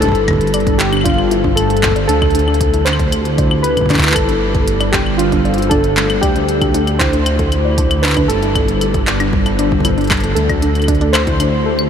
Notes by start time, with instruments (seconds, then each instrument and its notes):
Already playing: ambient pad E4 G4
0.01 detuned saw bass G1, ambient pad G3, synth pluck D4, synth keys A4, kick, closed hi-hat
0.05 kick
0.09 kick
0.12 kick, closed hi-hat
0.28 synth pluck A4, kick, closed hi-hat, claves
0.31 kick
0.33 kick
0.36 kick
0.38 kick, closed hi-hat
0.47 closed hi-hat
0.54 ambient pad D4, synth pluck D5, closed hi-hat, claves
0.60 closed hi-hat
0.67 synth pluck D4, kick, closed hi-hat
0.78 synth keys G4, ambient pad A4, clap, closed hi-hat
0.93 synth pluck D4, ambient pad C5, closed hi-hat, claves
0.97 claves
1.01 synth keys F4, claves
1.05 synth pluck D4, kick, closed hi-hat, claves
1.10 claves
1.14 claves
1.18 claves
1.31 synth pluck E4, closed hi-hat
1.44 synth pluck D4, kick
1.56 synth keys A4, closed hi-hat, claves
1.70 synth pluck A4, closed hi-hat
1.77 closed hi-hat
1.83 kick, clap, claves
1.87 kick
1.92 kick
1.96 synth pluck D5, closed hi-hat
2.07 detuned saw bass D2, ambient pad D3, synth pluck D4, synth keys A4, closed hi-hat
2.22 kick, closed hi-hat, claves
2.31 closed hi-hat
2.35 synth pluck D4, closed hi-hat
2.39 closed hi-hat
2.48 synth pluck D4, claves
2.54 closed hi-hat
2.61 kick, closed hi-hat
2.65 ambient pad A3
2.74 synth pluck E4, closed hi-hat
2.85 synth pluck D4, ambient pad G4, synth keys C5, clap, closed hi-hat
2.93 ambient pad E4, claves
2.99 kick, closed hi-hat
3.12 synth pluck A4, closed hi-hat, claves
3.25 closed hi-hat
3.38 synth pluck D5, kick, closed hi-hat
3.51 synth pluck D4, claves
3.63 synth keys B4, closed hi-hat
3.77 synth pluck D4, kick, closed hi-hat, claves
3.81 kick
3.86 kick
3.90 synth pluck D4, kick, clap, closed hi-hat
3.94 kick, clap
3.99 kick, clap
4.03 clap, closed hi-hat
4.07 clap
4.12 synth keys A4, clap
4.16 detuned saw bass G1, ambient pad G3, synth pluck E4, kick, closed hi-hat, claves
4.29 synth pluck D4, closed hi-hat
4.55 synth pluck A4, kick, closed hi-hat
4.62 ambient pad D4
4.68 closed hi-hat
4.80 synth pluck D5, closed hi-hat, claves
4.92 synth pluck D4, synth keys G4, ambient pad A4, kick, clap, closed hi-hat
5.06 ambient pad C5, claves
5.18 synth pluck D4, synth keys F4, closed hi-hat
5.32 synth pluck D4, kick, closed hi-hat
5.45 synth pluck D5, closed hi-hat
5.54 closed hi-hat
5.58 synth pluck F4, closed hi-hat
5.62 closed hi-hat
5.70 synth pluck D4, synth keys A4, kick, closed hi-hat, claves
5.84 closed hi-hat
5.97 synth pluck A3, clap, closed hi-hat
6.10 closed hi-hat, claves
6.21 detuned saw bass D2, ambient pad D3, synth keys G4, synth pluck D5, kick, closed hi-hat, claves
6.36 synth pluck D4, closed hi-hat
6.49 closed hi-hat
6.62 ambient pad A3, synth pluck D4, kick, closed hi-hat, claves
6.74 synth pluck D4, closed hi-hat
6.87 closed hi-hat, claves
6.99 synth pluck E4, synth keys C5, kick, clap, closed hi-hat
7.13 synth pluck D4, ambient pad E4 G4, closed hi-hat
7.26 closed hi-hat, claves
7.39 synth pluck A4, kick, closed hi-hat
7.52 closed hi-hat, claves
7.65 synth pluck D5
7.78 synth pluck D4, kick, closed hi-hat
7.91 closed hi-hat, claves
8.02 synth pluck D4, synth keys B4, clap, closed hi-hat
8.07 clap
8.10 clap
8.13 synth pluck D4, kick, clap, closed hi-hat, claves
8.28 detuned saw bass G1, ambient pad G3, synth keys A4, closed hi-hat
8.43 synth pluck E4, closed hi-hat
8.55 synth pluck D4, kick, closed hi-hat, claves
8.68 closed hi-hat
8.76 ambient pad D4
8.81 synth pluck A4, closed hi-hat, claves
8.94 kick, closed hi-hat
9.07 synth pluck D5, clap, closed hi-hat
9.20 synth pluck D4, ambient pad A4 C5, closed hi-hat, claves
9.33 kick
9.46 synth pluck D4, closed hi-hat, claves
9.59 synth pluck D4, closed hi-hat
9.72 kick
9.80 kick
9.85 synth pluck E4, closed hi-hat, claves
9.89 kick
9.98 synth pluck D4, closed hi-hat
10.01 closed hi-hat
10.04 closed hi-hat
10.07 kick, clap, closed hi-hat
10.11 closed hi-hat, claves
10.14 closed hi-hat
10.17 closed hi-hat
10.20 closed hi-hat
10.24 synth pluck A4, closed hi-hat
10.35 detuned saw bass D2, ambient pad D3, synth keys A4, closed hi-hat
10.49 synth pluck D5, kick, closed hi-hat, claves
10.60 ambient pad A3, synth pluck D4, closed hi-hat
10.75 closed hi-hat, claves
10.80 closed hi-hat, claves
10.84 ambient pad E4, claves
10.88 synth pluck D4, kick, closed hi-hat
10.95 closed hi-hat
11.01 synth pluck D4, closed hi-hat
11.13 synth keys C5, clap, closed hi-hat, claves
11.27 synth pluck E4, ambient pad G4, kick, closed hi-hat
11.40 synth pluck D4, closed hi-hat, claves
11.66 synth pluck A4
11.79 claves